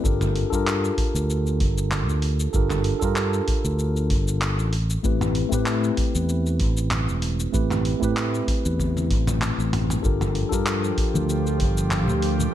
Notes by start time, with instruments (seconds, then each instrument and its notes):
0.04 fingered electric bass G1, tine electric piano D4 F4 G4 A4 A#4, kick, shaker
0.21 mid tom, shaker
0.36 open hi-hat
0.50 fingered electric bass G2, tine electric piano D4 F4 G4 A4, kick, shaker
0.55 tine electric piano A#4
0.67 clap, shaker
0.84 shaker
0.98 kick, open hi-hat
1.15 fingered electric bass D2, shaker
1.30 shaker
1.46 shaker
1.60 fingered electric bass G1, kick, open hi-hat
1.78 shaker
1.91 clap, mid tom, shaker
2.08 fingered electric bass D2, shaker
2.22 open hi-hat
2.40 shaker
2.53 fingered electric bass G1, tine electric piano D4 F4 G4 A4 A#4, kick, shaker
2.70 clap, mid tom, shaker
2.84 open hi-hat
3.00 fingered electric bass G2, tine electric piano D4 F4 G4 A4, kick, shaker
3.05 tine electric piano A#4
3.16 clap, shaker
3.33 shaker
3.48 kick, open hi-hat
3.65 fingered electric bass D2, shaker
3.79 shaker
3.96 shaker
4.10 fingered electric bass G1, kick, open hi-hat
4.28 shaker
4.42 clap, shaker
4.59 fingered electric bass A1, shaker
4.73 open hi-hat
4.90 shaker
5.03 fingered electric bass A1, tine electric piano A3 C4 E4 G4 B4, kick, shaker
5.21 mid tom, shaker
5.35 open hi-hat
5.49 fingered electric bass A2, tine electric piano A3 C4 E4, kick, shaker
5.53 tine electric piano G4 B4
5.66 clap, shaker
5.84 shaker
5.97 kick, open hi-hat
6.15 fingered electric bass E2, shaker
6.29 shaker
6.46 shaker
6.60 fingered electric bass A1, kick, open hi-hat
6.77 shaker
6.91 clap, mid tom, shaker
7.09 fingered electric bass E1, shaker
7.22 open hi-hat
7.40 shaker
7.52 fingered electric bass A1, tine electric piano A3 C4 E4 G4 B4, kick, shaker
7.71 clap, mid tom, shaker
7.85 open hi-hat
7.99 fingered electric bass A2, tine electric piano A3 C4 E4 G4, kick, shaker
8.04 tine electric piano B4
8.17 clap, shaker
8.34 shaker
8.48 kick, open hi-hat
8.65 fingered electric bass E2, shaker
8.79 kick, high tom, shaker
8.97 high tom, shaker
9.10 fingered electric bass A1, kick, open hi-hat
9.27 mid tom, shaker
9.42 clap, mid tom, shaker
9.58 fingered electric bass A1, shaker
9.73 mid tom, open hi-hat
9.90 mid tom, shaker
10.03 fingered electric bass G1, analog synth pad F3 G4, tine electric piano D4 F4 G4 A4 A#4, kick, shaker
10.21 mid tom, high conga, shaker
10.35 open hi-hat
10.49 fingered electric bass G2, tine electric piano D4 F4 G4 A4, kick, shaker
10.54 tine electric piano A#4
10.66 clap, shaker
10.84 shaker
10.98 kick, open hi-hat
11.14 fingered electric bass D2, high conga, shaker
11.29 shaker
11.47 shaker
11.60 fingered electric bass G1, kick, open hi-hat
11.77 shaker
11.91 clap, mid tom, shaker
12.08 fingered electric bass D2, low conga, shaker
12.22 open hi-hat
12.39 high conga, low conga, shaker